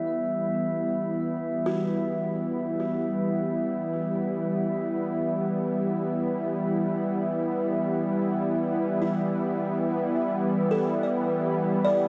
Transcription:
Already playing: analog synth pad E3 G3 B3 E4, kalimba E5, glass harmonica E5
1.66 kalimba F#4
9.02 kalimba E4
10.70 kalimba A4, glass harmonica E5
11.03 kalimba D5
11.85 kalimba D5

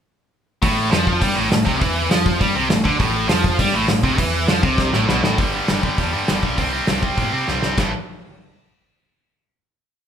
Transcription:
0.62 picked electric bass A1, distorted electric guitar A2, kick, open hi-hat
0.91 picked electric bass F2, distorted electric guitar F3, snare, open hi-hat
1.07 kick
1.21 picked electric bass G2, distorted electric guitar G3, kick, open hi-hat
1.36 picked electric bass A1, distorted electric guitar A2
1.51 picked electric bass A1, distorted electric guitar A2, snare, open hi-hat
1.65 picked electric bass C2, distorted electric guitar C3, kick
1.81 picked electric bass E2, distorted electric guitar E3, kick, open hi-hat
2.10 picked electric bass F2, distorted electric guitar F3, snare, open hi-hat
2.26 kick
2.40 picked electric bass G2, distorted electric guitar G3, kick, open hi-hat
2.55 picked electric bass C2, distorted electric guitar C3
2.70 picked electric bass A1, distorted electric guitar A2, snare, open hi-hat
2.84 picked electric bass D2, distorted electric guitar D3, kick
2.99 picked electric bass A1, distorted electric guitar A2, kick, open hi-hat
3.29 picked electric bass F2, distorted electric guitar F3, snare, open hi-hat
3.44 kick
3.58 picked electric bass G2, distorted electric guitar G3, kick, open hi-hat
3.73 picked electric bass A1, distorted electric guitar A2
3.88 picked electric bass A1, distorted electric guitar A2, snare, open hi-hat
4.03 picked electric bass C2, distorted electric guitar C3, kick
4.18 picked electric bass E2, distorted electric guitar E3, kick, open hi-hat
4.48 picked electric bass F2, distorted electric guitar F3, snare, open hi-hat
4.63 picked electric bass C2, distorted electric guitar C3, kick
4.78 kick, snare
4.93 picked electric bass A1, distorted electric guitar A2, snare
5.08 picked electric bass B1, distorted electric guitar B2, snare
5.23 picked electric bass A1, distorted electric guitar A2, snare
5.38 picked electric bass G1, distorted electric guitar G2 D3 G3, kick, open hi-hat
5.54 distorted electric guitar G2 D3 G3
5.67 picked electric bass G1, distorted electric guitar G2 D3 G3, snare, open hi-hat
5.83 distorted electric guitar G2 D3 G3, kick
5.97 picked electric bass E2, distorted electric guitar G2 D3 G3, kick, open hi-hat
6.13 picked electric bass G2, distorted electric guitar G2 D3 G3
6.28 picked electric bass G1, distorted electric guitar G2 D3 G3, snare, open hi-hat
6.43 picked electric bass B1, distorted electric guitar G2 D3 G3, kick
6.57 picked electric bass C2, distorted electric guitar C3 G3 C4, kick, open hi-hat
6.72 distorted electric guitar C3 G3 C4
6.86 picked electric bass C2, distorted electric guitar C3 G3 C4, snare, open hi-hat
7.02 distorted electric guitar C3 G3 C4, kick
7.17 picked electric bass A2, distorted electric guitar C3 G3 C4, kick, open hi-hat
7.33 picked electric bass C3, distorted electric guitar C3 G3 C4
7.47 picked electric bass C2, distorted electric guitar C3 G3 C4, snare
7.62 picked electric bass C2, distorted electric guitar C3 G3 C4, snare
7.77 picked electric bass A1, distorted electric guitar A2 E3 A3, kick, snare, ride bell

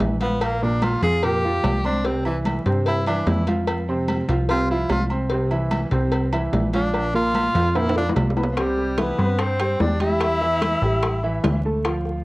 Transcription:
Already playing: grand piano E3 E4 E5
0.00 analog synth bass A#1, cowbell, high conga, low timbale
0.21 grand piano F3 F4 F5, tenor saxophone B3, cowbell, high conga, low agogo
0.41 tenor saxophone A#3, cowbell, low agogo
0.62 grand piano A#2 A#3 A#4, tenor saxophone D4, high conga
0.82 tenor saxophone F4, cowbell, high conga, low timbale, low agogo
1.02 analog synth bass F2, grand piano F3 F4 F5, tenor saxophone G#4, cowbell, high conga, low agogo
1.23 grand piano A#2 A#3 A#4, tenor saxophone G4, cowbell, high conga, low agogo
1.43 grand piano F3 F4 F5, high conga
1.63 analog synth bass C2, cowbell, high conga, low timbale, low agogo
1.84 grand piano C4 C5 C6, tenor saxophone D4, high conga, low agogo
2.04 grand piano C3 C4 C5, tenor saxophone C4, cowbell, high conga
2.25 grand piano E3 E4 E5, tenor saxophone E3, high conga, low agogo
2.45 cowbell, high conga, low timbale, low agogo
2.65 analog synth bass G2, grand piano C3 C4 C5, cowbell
2.86 tenor saxophone E4, cowbell, high conga, low agogo
3.06 grand piano E3 E4 E5, tenor saxophone D4, cowbell, high conga, low agogo
3.27 analog synth bass F2, tenor saxophone E4, cowbell, high conga, low timbale
3.47 grand piano F3 F4 F5, cowbell, high conga, low agogo
3.67 cowbell, high conga, low agogo
3.88 grand piano C3 C4 C5, high conga
4.08 cowbell, high conga, low timbale, low agogo
4.29 analog synth bass C2, grand piano F3 F4 F5, cowbell, high conga, low agogo
4.49 grand piano C3 C4 C5, tenor saxophone F4, cowbell, high conga, low agogo
4.69 grand piano F3 F4 F5, tenor saxophone E4, high conga
4.89 analog synth bass C2, tenor saxophone F4, cowbell, high conga, low timbale, low agogo
5.10 grand piano C4 C5 C6, low agogo
5.30 grand piano C3 C4 C5, cowbell, high conga
5.51 grand piano E3 E4 E5, high conga, low agogo
5.71 cowbell, high conga, low timbale, low agogo
5.91 analog synth bass C2, grand piano C3 C4 C5, cowbell
6.12 cowbell, high conga, low agogo
6.32 grand piano E3 E4 E5, cowbell, high conga, low agogo
6.53 analog synth bass A#1, cowbell, high conga, low timbale
6.73 grand piano F3 F4 F5, tenor saxophone D4, cowbell, high conga, low agogo
6.94 cowbell, high conga, low agogo
7.14 grand piano A#2 A#3 A#4, tenor saxophone F4, high conga
7.34 cowbell, high conga, low timbale, low agogo
7.55 analog synth bass F2, grand piano F3 F4 F5, cowbell, high conga, low agogo
7.75 grand piano A#2 A#3 A#4, tenor saxophone E4, cowbell, high conga, high timbale, low agogo
7.89 high timbale
7.96 grand piano F3 F4 F5, tenor saxophone D4, high bongo, high conga
8.09 low bongo
8.16 analog synth bass C2, cowbell, high conga, low timbale, low agogo
8.30 low timbale
8.37 grand piano B3 B4 B5, low bongo, low agogo
8.43 low timbale
8.50 tenor saxophone F3, flute F4
8.57 grand piano C3 C4 C5, tenor saxophone G3, flute G4, high bongo, high conga, high timbale
8.78 high bongo, high conga
8.98 grand piano E3 E4 E5, tenor saxophone B3, flute B4, high bongo, high conga, high timbale, low timbale
9.18 analog synth bass G2, grand piano C4 C5 C6, high bongo
9.39 tenor saxophone C4, flute C5, high bongo, high conga, high timbale
9.59 grand piano G3 G4 G5, high bongo, high conga, high timbale
9.80 analog synth bass E2, tenor saxophone D4, flute D5, high bongo, low bongo, high conga, low timbale
10.00 grand piano G3 G4 G5, tenor saxophone E4, flute E5, high conga, high timbale
10.21 high bongo, high conga, high timbale
10.41 grand piano E3 E4 E5, high bongo, high conga
10.62 high bongo, high conga, high timbale, low timbale
10.82 analog synth bass A1, grand piano G3 G4 G5, high bongo, high conga
11.03 high bongo, high conga, high timbale
11.23 grand piano E3 E4 E5, high bongo, high conga
11.44 analog synth bass D2, high bongo, low bongo, high conga, high timbale, low timbale
11.65 grand piano A3 A4 A5
11.85 grand piano F3 F4 F5, high bongo, high timbale
12.05 high bongo, high conga

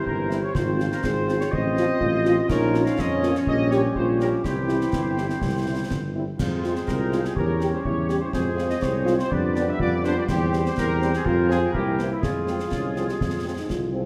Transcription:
Already playing: trombone section E3 C4, woodwind section E4 C5, euphonium G4
0.06 tuba G1, trumpet section A#4, concert bass drum
0.29 french horn section G3 C4 E4, snare
0.43 trumpet section C#5
0.54 tuba G#1, trombone section F3 C4, woodwind section F4 C5, euphonium F4, trumpet section C5, concert bass drum, snare
0.79 french horn section F3 C4 F4, snare
0.92 trumpet section A#4, snare
1.04 tuba G#1, euphonium G#4, trumpet section C5, concert bass drum, snare
1.28 french horn section F3 C4 F4, snare
1.40 trumpet section C#5, snare
1.52 tuba A1, euphonium C4, trumpet section D#5, concert bass drum
1.76 french horn section F3 C4 F4, snare
2.01 tuba A1, euphonium F4, concert bass drum
2.25 french horn section F3 C4 F4, snare
2.49 tuba A#1, trombone section F3 C#4, euphonium D#4, woodwind section F4 C#5, trumpet section A#4, concert bass drum, snare, crash
2.73 french horn section A#3 C#4 F4, snare
2.86 trumpet section F5, snare
2.98 tuba F2, euphonium C#4, trumpet section D#5, concert bass drum, snare
3.23 french horn section A#3 C#4 F4, snare
3.35 trumpet section C#5, snare
3.47 tuba A#1, trombone section G3, woodwind section G4, trumpet section D#5, concert bass drum
3.71 french horn section G3 C#4 G4, trumpet section C#5, snare
3.95 tuba A#1, euphonium F4, trumpet section C5, concert bass drum
4.20 french horn section G3 C#4 G4, trumpet section A#4, snare
4.44 tuba C2, trombone section E3 C4, euphonium E4, woodwind section E4 C5, trumpet section G4, concert bass drum, snare
4.68 french horn section G3 C4 E4, snare
4.81 snare
4.93 tuba G1, concert bass drum, snare
5.17 french horn section G3 C4 E4, snare
5.29 snare
5.42 tuba C2, concert bass drum, snare
5.66 french horn section G3 C4 E4
5.90 tuba G1, concert bass drum, snare
6.15 french horn section G3 C4 E4
6.38 tuba F2, trombone section G#3 C4, trumpet section F4, woodwind section G#4 C5, concert bass drum, snare, crash
6.63 french horn section G#3 C4 F4, snare
6.75 trumpet section C5, snare
6.86 tuba C2, euphonium F4, trumpet section A#4, concert bass drum, snare
7.12 french horn section G#3 C4 F4, snare
7.25 trumpet section G#4, snare
7.34 tuba E2, trombone section G3 C#4, woodwind section G4 C#5, euphonium G4, trumpet section A#4, concert bass drum
7.60 french horn section G3 C#4 G4, snare
7.73 trumpet section C5
7.85 tuba E2, euphonium E4, trumpet section C#5, concert bass drum
8.08 french horn section G3 C#4 G4, trumpet section C#5, snare
8.20 trumpet section C5
8.33 tuba F2, trombone section G#3 C4, euphonium C4, woodwind section G#4 C5, trumpet section G#4, concert bass drum, snare
8.56 french horn section G#3 C4 F4, snare
8.70 trumpet section D#5, snare
8.82 tuba C2, trumpet section C#5, concert bass drum, snare
9.06 french horn section G#3 C4 F4, snare
9.19 trumpet section C5, snare
9.31 tuba F2, trombone section G3 B3, euphonium D4, woodwind section G4 B4, trumpet section D5, concert bass drum
9.55 french horn section G3 B3 D4, snare
9.69 trumpet section E5
9.79 tuba F2, euphonium F4, trumpet section D5, concert bass drum
10.03 french horn section G3 B3 D4, trumpet section C5, snare
10.18 trumpet section D5
10.28 tuba E2, trombone section C4, euphonium G4, woodwind section G4 C5, trumpet section G4, concert bass drum, snare, crash
10.51 french horn section G3 C4, snare
10.66 trumpet section C5, snare
10.78 tuba E2, trumpet section A#4, concert bass drum, snare
11.00 french horn section G3 C4, snare
11.13 trumpet section G#4, snare
11.25 tuba F2, trombone section F3, woodwind section F4 C5, euphonium F4, trumpet section A#4, concert bass drum
11.49 french horn section F3 C4, trumpet section G#4, snare
11.73 tuba C2, trombone section E3 A#3, woodwind section E4 A#4, euphonium E4, trumpet section G4, concert bass drum
11.99 french horn section E3 A#3 C4, snare
12.11 trumpet section E4
12.21 tuba F2, trombone section F3 G#3, woodwind section F4 G#4, trumpet section F4, euphonium G#4, concert bass drum, snare
12.47 french horn section F3 G#3 C4, snare
12.59 snare
12.72 tuba C2, euphonium C#4, concert bass drum, snare
12.96 french horn section F3 G#3 C4, snare
13.09 euphonium G4, snare
13.21 tuba F2, euphonium F4, concert bass drum, snare
13.45 french horn section F3 G#3 C4
13.58 euphonium D#4
13.69 tuba C2, euphonium F4, concert bass drum, snare
13.93 french horn section F3 G#3 C4

